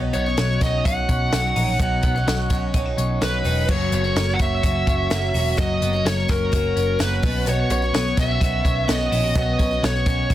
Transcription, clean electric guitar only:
0.00 1.78 B2 medium
0.00 0.14 B3 medium
0.15 0.26 B3 medium
0.26 0.61 C#4 soft
0.38 1.32 F#3 medium
0.62 1.08 C#4 medium
0.85 1.55 D#4 medium
1.09 2.02 C#4 medium
1.33 2.26 F#3 medium
1.56 2.74 D#4 medium
1.80 3.69 B2 medium
2.03 2.15 B3 medium
2.15 2.49 C#4 medium
2.27 3.21 F#3 medium
2.50 2.74 C#4 medium
2.74 2.85 C#4 medium
2.85 3.44 D#4 medium
2.97 3.92 C#4 medium
3.21 3.69 F#3 medium
3.45 3.74 D#4 medium
3.69 5.57 F#3 medium
3.93 4.04 B3 medium
4.04 4.38 C#4 medium
4.16 5.09 A#3 medium
4.39 4.86 C#4 medium
4.63 5.34 F#4 medium
4.87 5.82 C#4 medium
5.11 6.04 A#3 medium
5.34 6.52 F#4 medium
5.58 9.08 F#3 medium
5.82 5.94 B3 medium
5.94 6.28 C#4 medium
6.05 6.98 A#3 medium
6.29 6.76 C#4 medium
6.52 8.40 F#4 medium
6.76 7.50 C#4 medium
6.99 7.28 A#3 medium
7.23 7.46 B2 medium
7.47 9.34 B2 medium
7.70 8.17 C#4 medium
7.94 8.17 B3 medium
8.17 8.29 B3 medium
8.29 8.63 C#4 medium
8.40 9.11 F#4 medium
8.64 9.57 C#4 medium
8.88 9.82 B3 medium
9.12 9.24 E4 medium
9.24 10.29 F#4 medium
9.35 10.34 B2 medium
9.58 10.05 C#4 medium
9.83 10.34 B3 medium
10.06 10.34 C#4 medium
10.30 10.34 F#4 medium

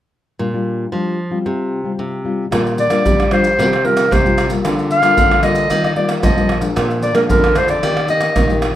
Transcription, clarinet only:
2.80 3.34 D5 loud
3.32 3.72 C5 medium
3.72 3.86 C5 medium
3.85 4.14 A#4 medium
4.12 4.52 C5 medium
4.92 5.41 F5 loud
5.43 5.81 D#5 medium
5.85 5.91 D#5 medium
5.97 6.09 D5 medium
6.24 6.61 D#5 medium
7.03 7.15 D5 medium
7.16 7.22 A#4 medium
7.30 7.59 A#4 medium
7.57 7.71 C5 medium
7.70 8.09 D5 medium
8.10 8.59 D#5 medium

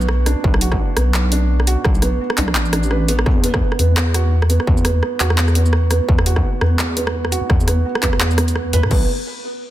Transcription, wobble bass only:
0.00 0.35 B1 medium
0.44 0.78 B1 loud
0.97 1.76 B1 medium
1.85 2.19 B1 loud
2.38 2.57 B1 medium
2.56 3.25 A1 medium
3.26 3.61 E2 loud
3.79 4.59 E2 medium
4.68 5.02 E2 medium
5.20 6.00 E2 medium
6.09 6.43 E2 loud
6.61 7.41 E2 medium
7.50 7.84 E2 loud
8.03 8.73 E2 medium
8.73 8.85 E2 medium
8.83 8.90 G#2 loud
8.91 9.08 B1 loud

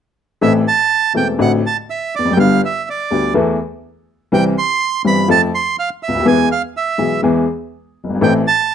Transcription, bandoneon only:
0.42 0.53 E5 medium
0.68 1.13 A5 medium
1.17 1.28 G5 medium
1.41 1.52 F#5 medium
1.66 1.77 A5 medium
1.90 2.15 E5 medium
2.15 2.33 D5 medium
2.33 2.38 G5 medium
2.39 2.62 F5 medium
2.65 2.89 E5 medium
2.90 3.34 D5 medium
4.34 4.44 G5 medium
4.58 5.02 C6 medium
5.07 5.28 B5 medium
5.31 5.41 A5 medium
5.55 5.76 C6 medium
5.79 5.90 F5 medium
6.03 6.27 E5 medium
6.27 6.49 G#5 medium
6.52 6.62 F5 medium
6.77 7.21 E5 medium
8.23 8.34 G5 medium
8.47 8.75 A5 medium

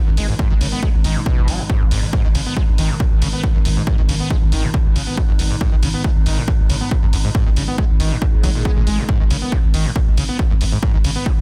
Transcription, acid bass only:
0.07 0.10 F#2 loud
0.17 0.27 G#3 medium
0.29 0.34 G#2 loud
0.39 0.49 G#2 loud
0.50 0.54 D#3 loud
0.61 0.67 C#3 loud
0.72 0.81 B3 loud
0.83 0.89 G#3 medium
1.04 1.17 D#3 medium
1.16 1.22 G#2 loud
1.26 1.49 B2 loud
1.48 1.61 F#3 loud
1.59 1.63 G#2 loud
1.70 1.83 G#2 medium
1.81 1.84 G#1 medium
1.91 2.01 G#2 medium
2.03 2.06 G#2 medium
2.13 2.23 G#2 loud
2.25 2.28 D#3 loud
2.35 2.41 C#3 loud
2.46 2.55 B3 loud
2.57 2.63 G#3 medium
2.78 2.91 D#3 loud
2.90 2.95 G#2 loud
3.00 3.04 B2 loud
3.22 3.28 C#3 loud
3.33 3.42 B3 medium
3.44 3.47 B2 medium
3.55 3.58 F#2 loud
3.65 3.69 F#2 medium
3.77 3.82 G#2 loud
3.87 3.96 G#2 loud
3.98 4.02 D#3 loud
4.09 4.15 C#3 loud
4.20 4.29 B3 loud
4.30 4.37 G#3 medium
4.52 4.65 D#3 loud
4.64 4.69 G#2 loud
4.74 4.78 B2 loud
4.96 5.02 C#3 loud
5.07 5.16 B3 loud
5.17 5.21 B2 medium
5.29 5.32 F#2 loud
5.39 5.43 F#2 medium
5.50 5.56 G#2 loud
5.61 5.70 G#2 loud
5.72 5.76 D#3 loud
5.83 5.89 C#3 loud
5.94 6.03 B3 loud
6.04 6.11 G#3 medium
6.26 6.39 D#3 loud
6.37 6.43 G#2 loud
6.48 6.52 B2 loud
6.69 6.76 C#3 loud
6.81 6.90 B3 loud
6.91 6.95 B2 medium
7.03 7.06 F#2 loud
7.13 7.17 F#2 medium
7.24 7.30 G#2 loud
7.35 7.44 G#2 loud
7.46 7.50 D#3 loud
7.57 7.63 C#3 loud
7.68 7.76 B3 loud
7.78 7.85 G#3 medium
8.00 8.13 D#3 loud
8.11 8.17 G#2 loud
8.22 8.26 B2 loud
8.43 8.50 F#3 loud
8.55 8.63 A#2 medium
8.65 8.71 B3 medium
8.77 8.82 A#2 loud
8.87 9.00 G#3 medium
8.98 9.04 G#2 medium
9.09 9.18 G#2 loud
9.20 9.24 D#3 loud
9.30 9.37 C#3 loud
9.42 9.54 B3 loud
9.52 9.59 G#2 loud
9.74 9.87 D#3 loud
9.85 9.91 G#2 loud
9.96 9.99 B2 loud
10.17 10.24 C#3 loud
10.29 10.37 B3 loud
10.39 10.43 B2 medium
10.51 10.54 F#2 loud
10.61 10.65 F#2 medium
10.72 10.78 G#2 loud
10.83 10.92 G#2 loud
10.94 10.97 D#3 loud
11.04 11.11 C#3 loud
11.16 11.28 B3 loud
11.26 11.32 G#2 loud

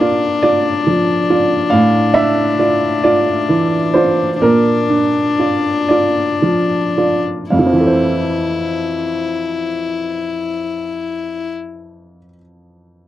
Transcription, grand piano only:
0.00 1.67 A#2 soft
0.00 0.25 A#3 soft
0.00 0.39 F4 soft
0.00 0.38 A#4 medium
0.00 0.39 D5 soft
0.43 0.82 F4 soft
0.43 1.29 D5 medium
0.87 1.54 F3 soft
1.30 1.68 F4 soft
1.30 1.68 D5 soft
1.70 4.38 A2 soft
1.70 2.11 F5 medium
2.14 2.86 D4 soft
2.14 2.99 E5 medium
2.59 2.99 F4 soft
2.59 3.00 D5 soft
3.04 3.45 F4 soft
3.04 3.90 D5 medium
3.49 4.22 E3 soft
3.94 4.37 F4 soft
3.94 4.37 C5 medium
3.94 4.38 D5 soft
4.42 7.48 A#2 soft
4.42 5.86 A#4 medium
4.89 5.69 D4 soft
5.39 5.86 F4 soft
5.39 5.86 D5 soft
5.88 6.39 F4 soft
5.88 6.96 D5 soft
6.42 7.30 F3 soft
6.98 7.48 F4 soft
6.98 7.48 D5 soft
7.50 12.18 F2 soft
7.50 12.16 F5 soft
7.59 12.25 F3 soft
7.66 12.30 C4 soft
7.73 12.33 E3 soft
7.80 12.37 A4 soft
7.87 12.40 C5 soft

